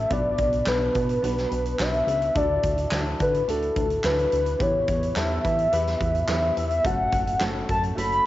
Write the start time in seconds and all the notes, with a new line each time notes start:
Already playing: A3 C#4 F#4 A4 B4 E5
0.10 B1 B2 B3 D4 F#4 B4 D5, kick, closed hi-hat
0.38 B1, kick, closed hi-hat
0.53 closed hi-hat
0.66 B1 B3 D4 F#4 B4, snare, clap
0.95 B2, kick, closed hi-hat
1.09 closed hi-hat
1.22 B1 B3 D4 F#4 B4, closed hi-hat
1.38 snare
1.51 B1, closed hi-hat
1.65 closed hi-hat
1.79 B1 B3 D4 F#4 B4 E5, snare, clap
1.94 closed hi-hat
2.07 C#2, closed hi-hat
2.22 closed hi-hat
2.35 D2 D3 D4 E4 F#4 A4 D5, kick, closed hi-hat
2.63 D2, kick, closed hi-hat
2.78 closed hi-hat
2.91 D2 D4 E4 F#4 A4, snare, clap
3.20 D3 B4, kick, closed hi-hat
3.34 closed hi-hat
3.48 D2 D4 E4 F#4 A4, closed hi-hat
3.62 closed hi-hat
3.76 D2, kick, closed hi-hat
3.90 closed hi-hat
4.04 D2 D4 E4 F#4 B4, snare, clap
4.19 closed hi-hat
4.32 D2, closed hi-hat
4.46 closed hi-hat
4.59 E2 E3 B3 E4 G4 B4 C#5, kick, closed hi-hat
4.88 E2, kick, closed hi-hat
5.03 closed hi-hat
5.15 E2 B3 E4 G4 A4 E5, snare, clap
5.45 E3, kick, closed hi-hat
5.59 closed hi-hat
5.72 E2 B3 E4 G4 B4, closed hi-hat
5.87 snare, closed hi-hat
6.01 E2, kick, closed hi-hat
6.15 closed hi-hat
6.28 E2 B3 E4 G4 B4 E5, snare, clap
6.57 E2, closed hi-hat
6.71 closed hi-hat
6.84 F#1 A3 C#4 F#4 A4 F#5, kick, closed hi-hat
7.12 F#1, kick, closed hi-hat
7.27 closed hi-hat
7.39 F#1 A3 C#4 F#4 A4, snare, clap
7.69 F#2 A5, kick, closed hi-hat
7.83 closed hi-hat
7.95 F#1 A3 C#4 F#4 A4 B5, closed hi-hat
8.12 closed hi-hat